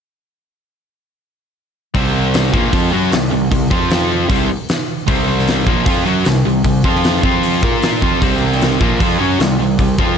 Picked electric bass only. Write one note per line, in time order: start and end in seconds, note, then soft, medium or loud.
1.95 2.49 C2 medium
2.54 2.72 A#1 medium
2.73 2.91 F2 medium
2.94 3.12 F#2 medium
3.14 3.31 C2 medium
3.33 3.51 C2 medium
3.51 3.69 C2 medium
3.71 4.26 F2 medium
4.30 4.48 C2 loud
5.08 5.63 C2 medium
5.67 5.85 A#1 medium
5.86 6.05 F2 loud
6.06 6.24 F#2 medium
6.26 6.44 C2 medium
6.46 6.64 C2 medium
6.65 6.83 C2 medium
6.84 7.21 F2 medium
7.23 7.60 F2 medium
7.63 8.00 A#2 medium
8.02 8.20 F2 medium
8.22 8.77 C2 medium
8.81 8.99 A#1 medium
9.00 9.19 F2 medium
9.20 9.38 F#2 medium
9.39 9.58 C2 medium
9.59 9.78 C2 medium
9.79 9.97 C2 medium
9.99 10.18 F2 medium